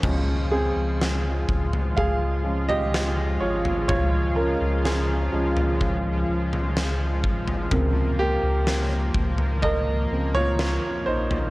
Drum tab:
CC |x---------------|----------------|----------------|
SD |----o-------o---|----o-------o---|----o-------o---|
FT |o------oo--o---o|o------oo--o---o|o------oo--o---o|
BD |o-----o-o-------|o-------o-----o-|o-----o-o-------|